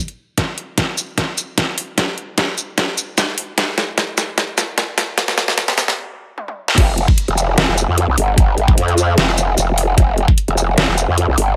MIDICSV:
0, 0, Header, 1, 3, 480
1, 0, Start_track
1, 0, Key_signature, -4, "minor"
1, 0, Tempo, 400000
1, 452, Time_signature, 4, 2, 24, 8
1, 13877, End_track
2, 0, Start_track
2, 0, Title_t, "Wobble bass"
2, 0, Program_c, 0, 39
2, 8132, Note_on_c, 0, 29, 97
2, 8478, Note_off_c, 0, 29, 0
2, 8738, Note_on_c, 0, 29, 99
2, 9198, Note_off_c, 0, 29, 0
2, 9218, Note_on_c, 0, 29, 94
2, 9438, Note_off_c, 0, 29, 0
2, 9458, Note_on_c, 0, 41, 94
2, 9678, Note_off_c, 0, 41, 0
2, 9698, Note_on_c, 0, 36, 98
2, 9794, Note_off_c, 0, 36, 0
2, 9812, Note_on_c, 0, 31, 98
2, 10274, Note_off_c, 0, 31, 0
2, 10292, Note_on_c, 0, 32, 101
2, 10514, Note_off_c, 0, 32, 0
2, 10532, Note_on_c, 0, 41, 100
2, 10994, Note_off_c, 0, 41, 0
2, 11012, Note_on_c, 0, 29, 96
2, 11474, Note_off_c, 0, 29, 0
2, 11492, Note_on_c, 0, 29, 97
2, 11954, Note_off_c, 0, 29, 0
2, 11972, Note_on_c, 0, 29, 95
2, 12318, Note_off_c, 0, 29, 0
2, 12578, Note_on_c, 0, 29, 103
2, 13038, Note_off_c, 0, 29, 0
2, 13058, Note_on_c, 0, 29, 97
2, 13278, Note_off_c, 0, 29, 0
2, 13298, Note_on_c, 0, 41, 92
2, 13518, Note_off_c, 0, 41, 0
2, 13538, Note_on_c, 0, 36, 99
2, 13633, Note_off_c, 0, 36, 0
2, 13652, Note_on_c, 0, 31, 103
2, 13877, Note_off_c, 0, 31, 0
2, 13877, End_track
3, 0, Start_track
3, 0, Title_t, "Drums"
3, 98, Note_on_c, 9, 42, 37
3, 218, Note_off_c, 9, 42, 0
3, 451, Note_on_c, 9, 36, 96
3, 451, Note_on_c, 9, 38, 48
3, 451, Note_on_c, 9, 42, 76
3, 571, Note_off_c, 9, 36, 0
3, 571, Note_off_c, 9, 38, 0
3, 571, Note_off_c, 9, 42, 0
3, 692, Note_on_c, 9, 42, 49
3, 812, Note_off_c, 9, 42, 0
3, 931, Note_on_c, 9, 36, 101
3, 931, Note_on_c, 9, 38, 50
3, 931, Note_on_c, 9, 42, 74
3, 1051, Note_off_c, 9, 36, 0
3, 1051, Note_off_c, 9, 38, 0
3, 1051, Note_off_c, 9, 42, 0
3, 1172, Note_on_c, 9, 42, 52
3, 1172, Note_on_c, 9, 82, 56
3, 1292, Note_off_c, 9, 42, 0
3, 1292, Note_off_c, 9, 82, 0
3, 1411, Note_on_c, 9, 36, 99
3, 1411, Note_on_c, 9, 38, 49
3, 1411, Note_on_c, 9, 42, 71
3, 1531, Note_off_c, 9, 36, 0
3, 1531, Note_off_c, 9, 38, 0
3, 1531, Note_off_c, 9, 42, 0
3, 1652, Note_on_c, 9, 42, 50
3, 1652, Note_on_c, 9, 82, 63
3, 1772, Note_off_c, 9, 42, 0
3, 1772, Note_off_c, 9, 82, 0
3, 1891, Note_on_c, 9, 36, 105
3, 1892, Note_on_c, 9, 38, 57
3, 1892, Note_on_c, 9, 42, 76
3, 2011, Note_off_c, 9, 36, 0
3, 2012, Note_off_c, 9, 38, 0
3, 2012, Note_off_c, 9, 42, 0
3, 2132, Note_on_c, 9, 46, 88
3, 2252, Note_off_c, 9, 46, 0
3, 2371, Note_on_c, 9, 36, 95
3, 2372, Note_on_c, 9, 38, 59
3, 2372, Note_on_c, 9, 42, 77
3, 2491, Note_off_c, 9, 36, 0
3, 2492, Note_off_c, 9, 38, 0
3, 2492, Note_off_c, 9, 42, 0
3, 2612, Note_on_c, 9, 42, 46
3, 2732, Note_off_c, 9, 42, 0
3, 2852, Note_on_c, 9, 36, 103
3, 2852, Note_on_c, 9, 38, 61
3, 2852, Note_on_c, 9, 42, 75
3, 2972, Note_off_c, 9, 36, 0
3, 2972, Note_off_c, 9, 38, 0
3, 2972, Note_off_c, 9, 42, 0
3, 3092, Note_on_c, 9, 42, 54
3, 3092, Note_on_c, 9, 82, 58
3, 3212, Note_off_c, 9, 42, 0
3, 3212, Note_off_c, 9, 82, 0
3, 3332, Note_on_c, 9, 36, 100
3, 3332, Note_on_c, 9, 38, 65
3, 3332, Note_on_c, 9, 42, 74
3, 3452, Note_off_c, 9, 36, 0
3, 3452, Note_off_c, 9, 38, 0
3, 3452, Note_off_c, 9, 42, 0
3, 3572, Note_on_c, 9, 42, 50
3, 3572, Note_on_c, 9, 82, 65
3, 3692, Note_off_c, 9, 42, 0
3, 3692, Note_off_c, 9, 82, 0
3, 3812, Note_on_c, 9, 36, 100
3, 3812, Note_on_c, 9, 38, 69
3, 3812, Note_on_c, 9, 42, 76
3, 3812, Note_on_c, 9, 82, 56
3, 3932, Note_off_c, 9, 36, 0
3, 3932, Note_off_c, 9, 38, 0
3, 3932, Note_off_c, 9, 42, 0
3, 3932, Note_off_c, 9, 82, 0
3, 4052, Note_on_c, 9, 46, 92
3, 4172, Note_off_c, 9, 46, 0
3, 4292, Note_on_c, 9, 36, 98
3, 4292, Note_on_c, 9, 38, 74
3, 4292, Note_on_c, 9, 42, 79
3, 4412, Note_off_c, 9, 36, 0
3, 4412, Note_off_c, 9, 38, 0
3, 4412, Note_off_c, 9, 42, 0
3, 4532, Note_on_c, 9, 38, 71
3, 4532, Note_on_c, 9, 42, 51
3, 4652, Note_off_c, 9, 38, 0
3, 4652, Note_off_c, 9, 42, 0
3, 4772, Note_on_c, 9, 36, 101
3, 4772, Note_on_c, 9, 38, 81
3, 4772, Note_on_c, 9, 42, 75
3, 4892, Note_off_c, 9, 36, 0
3, 4892, Note_off_c, 9, 38, 0
3, 4892, Note_off_c, 9, 42, 0
3, 5012, Note_on_c, 9, 38, 85
3, 5012, Note_on_c, 9, 42, 55
3, 5012, Note_on_c, 9, 82, 55
3, 5132, Note_off_c, 9, 38, 0
3, 5132, Note_off_c, 9, 42, 0
3, 5132, Note_off_c, 9, 82, 0
3, 5252, Note_on_c, 9, 36, 101
3, 5252, Note_on_c, 9, 38, 79
3, 5252, Note_on_c, 9, 42, 76
3, 5372, Note_off_c, 9, 36, 0
3, 5372, Note_off_c, 9, 38, 0
3, 5372, Note_off_c, 9, 42, 0
3, 5492, Note_on_c, 9, 38, 85
3, 5492, Note_on_c, 9, 42, 50
3, 5492, Note_on_c, 9, 82, 62
3, 5612, Note_off_c, 9, 38, 0
3, 5612, Note_off_c, 9, 42, 0
3, 5612, Note_off_c, 9, 82, 0
3, 5732, Note_on_c, 9, 36, 100
3, 5732, Note_on_c, 9, 38, 90
3, 5732, Note_on_c, 9, 42, 78
3, 5852, Note_off_c, 9, 36, 0
3, 5852, Note_off_c, 9, 38, 0
3, 5852, Note_off_c, 9, 42, 0
3, 5972, Note_on_c, 9, 38, 93
3, 5972, Note_on_c, 9, 46, 101
3, 6092, Note_off_c, 9, 38, 0
3, 6092, Note_off_c, 9, 46, 0
3, 6211, Note_on_c, 9, 38, 93
3, 6211, Note_on_c, 9, 42, 84
3, 6212, Note_on_c, 9, 36, 95
3, 6331, Note_off_c, 9, 38, 0
3, 6331, Note_off_c, 9, 42, 0
3, 6332, Note_off_c, 9, 36, 0
3, 6338, Note_on_c, 9, 38, 85
3, 6452, Note_off_c, 9, 38, 0
3, 6452, Note_on_c, 9, 38, 91
3, 6452, Note_on_c, 9, 42, 51
3, 6572, Note_off_c, 9, 38, 0
3, 6572, Note_off_c, 9, 42, 0
3, 6578, Note_on_c, 9, 38, 83
3, 6692, Note_off_c, 9, 38, 0
3, 6692, Note_on_c, 9, 36, 104
3, 6692, Note_on_c, 9, 38, 96
3, 6692, Note_on_c, 9, 42, 83
3, 6812, Note_off_c, 9, 36, 0
3, 6812, Note_off_c, 9, 38, 0
3, 6812, Note_off_c, 9, 42, 0
3, 6818, Note_on_c, 9, 38, 88
3, 6818, Note_on_c, 9, 42, 39
3, 6932, Note_off_c, 9, 38, 0
3, 6932, Note_off_c, 9, 42, 0
3, 6932, Note_on_c, 9, 38, 102
3, 6932, Note_on_c, 9, 42, 56
3, 6932, Note_on_c, 9, 82, 55
3, 7052, Note_off_c, 9, 38, 0
3, 7052, Note_off_c, 9, 42, 0
3, 7052, Note_off_c, 9, 82, 0
3, 7059, Note_on_c, 9, 38, 84
3, 7179, Note_off_c, 9, 38, 0
3, 7652, Note_on_c, 9, 48, 66
3, 7772, Note_off_c, 9, 48, 0
3, 7779, Note_on_c, 9, 48, 63
3, 7899, Note_off_c, 9, 48, 0
3, 8019, Note_on_c, 9, 38, 82
3, 8132, Note_on_c, 9, 36, 116
3, 8132, Note_on_c, 9, 42, 85
3, 8132, Note_on_c, 9, 49, 101
3, 8139, Note_off_c, 9, 38, 0
3, 8252, Note_off_c, 9, 36, 0
3, 8252, Note_off_c, 9, 42, 0
3, 8252, Note_off_c, 9, 49, 0
3, 8372, Note_on_c, 9, 42, 53
3, 8492, Note_off_c, 9, 42, 0
3, 8498, Note_on_c, 9, 36, 105
3, 8612, Note_on_c, 9, 42, 85
3, 8618, Note_off_c, 9, 36, 0
3, 8732, Note_off_c, 9, 42, 0
3, 8739, Note_on_c, 9, 42, 40
3, 8852, Note_off_c, 9, 42, 0
3, 8852, Note_on_c, 9, 42, 58
3, 8852, Note_on_c, 9, 82, 52
3, 8972, Note_off_c, 9, 42, 0
3, 8972, Note_off_c, 9, 82, 0
3, 9092, Note_on_c, 9, 38, 118
3, 9092, Note_on_c, 9, 42, 80
3, 9212, Note_off_c, 9, 38, 0
3, 9212, Note_off_c, 9, 42, 0
3, 9332, Note_on_c, 9, 42, 57
3, 9332, Note_on_c, 9, 82, 59
3, 9452, Note_off_c, 9, 42, 0
3, 9452, Note_off_c, 9, 82, 0
3, 9572, Note_on_c, 9, 42, 86
3, 9692, Note_off_c, 9, 42, 0
3, 9812, Note_on_c, 9, 46, 100
3, 9932, Note_off_c, 9, 46, 0
3, 10052, Note_on_c, 9, 36, 125
3, 10052, Note_on_c, 9, 42, 85
3, 10172, Note_off_c, 9, 36, 0
3, 10172, Note_off_c, 9, 42, 0
3, 10292, Note_on_c, 9, 42, 53
3, 10412, Note_off_c, 9, 42, 0
3, 10418, Note_on_c, 9, 36, 113
3, 10532, Note_on_c, 9, 42, 81
3, 10538, Note_off_c, 9, 36, 0
3, 10652, Note_off_c, 9, 42, 0
3, 10659, Note_on_c, 9, 42, 40
3, 10773, Note_off_c, 9, 42, 0
3, 10773, Note_on_c, 9, 42, 58
3, 10773, Note_on_c, 9, 82, 55
3, 10893, Note_off_c, 9, 42, 0
3, 10893, Note_off_c, 9, 82, 0
3, 11013, Note_on_c, 9, 38, 122
3, 11013, Note_on_c, 9, 42, 80
3, 11133, Note_off_c, 9, 38, 0
3, 11133, Note_off_c, 9, 42, 0
3, 11253, Note_on_c, 9, 42, 57
3, 11253, Note_on_c, 9, 82, 60
3, 11373, Note_off_c, 9, 42, 0
3, 11373, Note_off_c, 9, 82, 0
3, 11492, Note_on_c, 9, 42, 88
3, 11492, Note_on_c, 9, 82, 53
3, 11612, Note_off_c, 9, 42, 0
3, 11612, Note_off_c, 9, 82, 0
3, 11732, Note_on_c, 9, 46, 97
3, 11852, Note_off_c, 9, 46, 0
3, 11972, Note_on_c, 9, 36, 121
3, 11972, Note_on_c, 9, 42, 80
3, 12092, Note_off_c, 9, 36, 0
3, 12092, Note_off_c, 9, 42, 0
3, 12212, Note_on_c, 9, 42, 53
3, 12332, Note_off_c, 9, 42, 0
3, 12338, Note_on_c, 9, 36, 106
3, 12452, Note_on_c, 9, 42, 82
3, 12458, Note_off_c, 9, 36, 0
3, 12572, Note_off_c, 9, 42, 0
3, 12579, Note_on_c, 9, 42, 38
3, 12692, Note_off_c, 9, 42, 0
3, 12692, Note_on_c, 9, 42, 57
3, 12692, Note_on_c, 9, 82, 53
3, 12812, Note_off_c, 9, 42, 0
3, 12812, Note_off_c, 9, 82, 0
3, 12932, Note_on_c, 9, 38, 122
3, 12932, Note_on_c, 9, 42, 79
3, 13052, Note_off_c, 9, 38, 0
3, 13052, Note_off_c, 9, 42, 0
3, 13172, Note_on_c, 9, 42, 56
3, 13172, Note_on_c, 9, 82, 61
3, 13292, Note_off_c, 9, 42, 0
3, 13292, Note_off_c, 9, 82, 0
3, 13412, Note_on_c, 9, 42, 81
3, 13532, Note_off_c, 9, 42, 0
3, 13652, Note_on_c, 9, 46, 93
3, 13772, Note_off_c, 9, 46, 0
3, 13877, End_track
0, 0, End_of_file